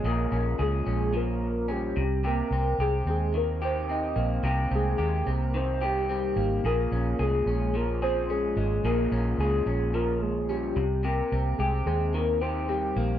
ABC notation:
X:1
M:4/4
L:1/16
Q:"Swing 16ths" 1/4=109
K:Bbdor
V:1 name="Soft synth lead"
B4 A2 A2 B4 G4 | B4 A2 A2 B2 c2 e3 z | z2 A4 B2 c2 G2 G4 | B4 A2 A2 B2 c2 A4 |
B4 A2 A2 B2 A2 G4 | B4 A2 A2 B2 c2 G4 |]
V:2 name="Clean electric guitar"
[B,,F,A,DA]2 D2 A2 D2 F,4 D2 C,2 | [C,G]2 C2 G2 C2 E,2 G2 C2 B,2 | [C,G]2 C2 G2 C2 E,2 G2 C2 B,2 | [B,,A]2 D2 A2 D2 F,2 A2 D2 A,2 |
[B,,A]2 D2 A2 D2 F,4 D2 C,2 | [C,G]2 C2 G2 C2 E,2 G2 C2 B,2 |]
V:3 name="Fingered electric bass" clef=bass
B,,,2 B,,,2 D,,2 B,,,8 C,,2- | C,,2 C,,2 C,,2 E,,8 B,,,2 | C,,2 C,,2 E,,2 C,,8 A,,,2 | B,,,2 B,,,2 C,,2 B,,,8 A,,,2 |
B,,,2 B,,,2 D,,2 B,,,8 C,,2- | C,,2 C,,2 C,,2 E,,8 B,,,2 |]